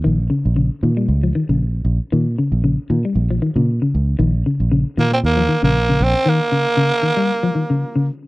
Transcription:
X:1
M:4/4
L:1/16
Q:"Swing 16ths" 1/4=116
K:Bbdor
V:1 name="Tenor saxophone"
z16 | z16 | z6 B, C B,3 B,3 C2 | B,12- B,2 z2 |]
V:2 name="Clean electric guitar" clef=bass
E,2 D,2 D,2 E, G,2 F, E, D,2 z3 | E,2 D,2 D,2 E, G,2 F, E, D,2 D,2 z | E,2 D,2 D,2 E, z2 F, E, D,2 D,2 z | E,2 D,2 D,2 E, G,2 F, E, D,2 D,2 z |]
V:3 name="Fingered electric bass" clef=bass
B,,,2 z B,,,2 z B,,2 D,,2 z B,,,3 B,,, z | B,,2 z B,,,2 z B,, z B,,,2 z B,,2 z D,,2 | B,,,2 z B,,,2 z B,,2 E,,2 z B,,,3 B,,, z | z16 |]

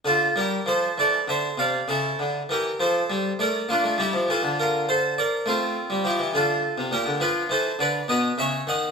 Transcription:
X:1
M:6/8
L:1/16
Q:3/8=67
K:Dm
V:1 name="Harpsichord"
[FA]2 [GB]2 [Ac]2 [Ad]2 [ce]2 [df]2 | [EA]4 [GB]2 [Ac]4 [Bd]2 | [DF]2 [EG]2 [FA]2 [FB]2 [Ac]2 [Bd]2 | [CF]4 [EG]2 [FA]4 [GB]2 |
[K:Ddor] [FB]2 [Ac]2 [Bd]2 [B^d]2 [^ce]2 [d^f]2 |]
V:2 name="Harpsichord" clef=bass
D,2 G,2 F,2 E,2 D,2 C,2 | ^C,2 D,2 E,2 F,2 G,2 A,2 | B, A, G, F, E, D,6- D, | A,3 G, F, E, D,3 C, B,, D, |
[K:Ddor] F,2 E,2 D,2 B,,2 ^C,2 ^D,2 |]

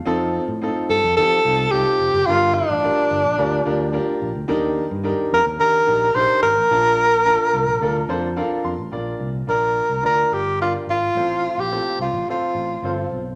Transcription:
X:1
M:4/4
L:1/16
Q:1/4=108
K:Bb
V:1 name="Tenor saxophone"
z6 A2 A4 G4 | F2 D12 z2 | z6 B2 B4 c2 B2- | B12 z4 |
z4 B4 B2 G2 F2 F2- | F3 G3 F2 F6 z2 |]
V:2 name="Upright piano"
[CEFA]2 z2 [CEFA]2 z2 [CEFG]2 [CEFA]2 [CEFA]2 z2 | [DFGB]2 z2 [DFGB]2 z2 [DFGB]2 [DFGB]2 [DFGB]2 z2 | [DEGB]2 z2 [DEGB]2 z2 [DEGB]2 [DEGB]2 [DEGB]2 z2 | [DFBa]2 z2 [DFBa]2 z2 [DFAB]2 [DFAc]2 [DFABf]2 c'2 |
[DFBd]2 z2 [DFBd]2 z2 [DFBd]2 z2 [DFBd]2 z2 | [CFAc]2 z2 [CFAc]2 z2 [CFAc]2 z2 [CFAc]2 z2 |]
V:3 name="Upright piano" clef=bass
z16 | G,,6 z8 z2 | E,6 z8 z2 | B,,6 z8 z2 |
B,,6 z8 z2 | A,,6 z8 z2 |]
V:4 name="Fingered electric bass" clef=bass
F,,3 A,,2 z G,, F,, F,2 C,,2 C,, z F,,, _G,,, | G,,,3 A,,,2 z G,,, B,,, D,,2 D,,3 z B,,, D,, | E,,3 G,,2 z F,, E,, E,2 B,,,2 B,,, z _A,,, =A,,, | B,,,4- B,,, z C,, B,,, D,,2 F,,3 z F,, A,,, |
B,,,2 C,,2 B,,,3 C,, D,,2 G,,,4 _A,,,2 | A,,,3 B,,,2 z C,, A,,, z2 A,,,2 G,,,2 _C,,2 |]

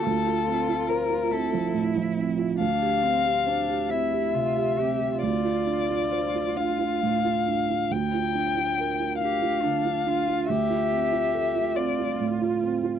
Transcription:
X:1
M:6/8
L:1/16
Q:3/8=46
K:Dm
V:1 name="Violin"
A4 B2 A2 z4 | f6 e6 | d6 f6 | g6 f6 |
e6 d2 z4 |]
V:2 name="Cello"
F6 E6 | D2 C2 D2 E2 F2 G2 | F8- F z3 | z6 G2 D2 F2 |
G6 F6 |]
V:3 name="Felt piano"
D,, F C F c F C F, A,, F, C F | D,, G C G c G C G C, G C G | D,, F D F c F D F A,, F D F | D,, F D F B F D F D, F D F |
D,, F C F A F C F A,, F C F |]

